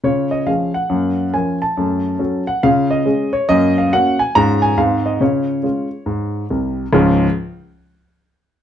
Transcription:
X:1
M:4/4
L:1/8
Q:"Swing" 1/4=139
K:Db
V:1 name="Grand piano"
d e f g3 a =a- | =a3 g f e2 d | e f g a b a f e | d6 z2 |
[D,,A,,F,A,DF] z6 z |]
V:2 name="Grand piano"
[D,F]2 [F,DA]2 [G,,B,]2 [F,DB]2 | [G,,=A,]2 [G,D=A]2 [D,F]2 [_A,D_A]2 | [G,,B,]2 [B,DG]2 [A,,A,DF]2 [A,,A,CE]2 | [D,F]2 [A,DF]2 A,,2 [C,,C,]2 |
z8 |]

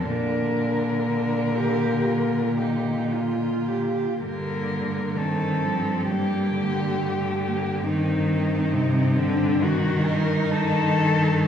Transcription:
X:1
M:4/4
L:1/8
Q:1/4=64
K:Bb
V:1 name="Cello"
B4- B G F2 | [K:Gm] B2 A2 G4 | E3 D ^F B A2 |]
V:2 name="Cello"
D2 D G F E F G | [K:Gm] B,2 C2 B,2 A, B, | C4 E4 |]
V:3 name="Cello" clef=bass
D,8 | [K:Gm] D,2 E, F, G, D,3 | E,2 C, D, E,2 E,2 |]
V:4 name="Cello" clef=bass
B,,8 | [K:Gm] G,,8 | G,,8 |]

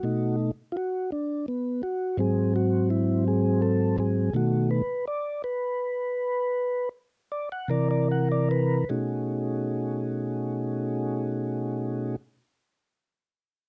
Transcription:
X:1
M:12/8
L:1/16
Q:3/8=53
K:Bmix
V:1 name="Tonewheel organ"
F2 z2 [^EF]2 =D2 B,2 F2 G2 F2 =E2 G2 A2 G2 | F2 B2 =d2 B8 z2 d f d d f d B2 | [B,,A,CDFG]24 |]
V:2 name="Tonewheel organ" clef=bass
[B,,A,D]2 z8 z2 [G,,F,^B,]8- [G,,F,B,]2 [G,,F,B,]2 | [B,,D,A,]2 z16 [=C,E,_B]6 | z24 |]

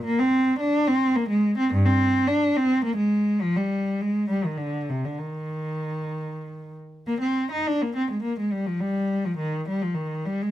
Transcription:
X:1
M:3/4
L:1/16
Q:1/4=104
K:Eb
V:1 name="Cello" clef=bass
B, C3 D2 C2 B, A,2 C | G,, C3 D2 C2 B, A,3 | F, G,3 A,2 G, E, D,2 C, D, | E,8- E,2 z2 |
B, C2 E D B, C A, B, A, G, F, | G,3 F, E,2 G, F, E,2 G, A, |]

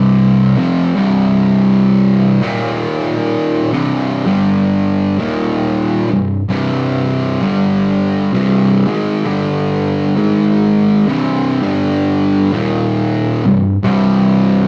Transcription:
X:1
M:4/4
L:1/8
Q:"Swing" 1/4=65
K:Cm
V:1 name="Distorted electric guitar" clef=bass
[C,,G,,C,] [F,,C,F,] [C,,G,,C,]3 [E,,B,,E,]3 | [C,,G,,C,] [G,,D,G,]2 [E,,B,,E,]2 [C,,G,,] [C,,G,,C,]2 | [G,,D,G,]2 [C,,G,,C,] [A,,E,A,] [G,,D,G,]2 [A,,E,A,]2 | [C,,G,,C,] [G,,D,G,]2 [E,,B,,E,]2 [C,,G,,] [C,,G,,C,]2 |]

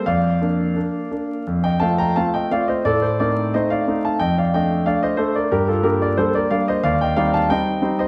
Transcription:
X:1
M:4/4
L:1/16
Q:1/4=90
K:Bb
V:1 name="Grand piano"
[df]8- [df] [eg] [fa] [gb] [fa] [eg] [df] [ce] | [Ad] [Ac] [Bd]2 [ce] [df]2 [fa] [eg] [df] [eg]2 [df] [ce] [Ac] [Bd] | [GB] [FA] [GB] [Bd] [Ac] [Bd] [df] [ce] [df] [eg] [df] [fa] [eg]3 [ce] |]
V:2 name="Grand piano"
F,,2 [B,D]2 [B,D]2 [B,D]2 F,,2 [A,CF]2 [A,CF]2 [A,CF]2 | A,,2 [A,CE]2 [A,CE]2 [A,CE]2 F,,2 [A,D]2 [A,D]2 [A,D]2 | G,,2 [G,B,D]2 [G,B,D]2 [G,B,D]2 E,,2 [G,CE]2 [G,CE]2 [G,CE]2 |]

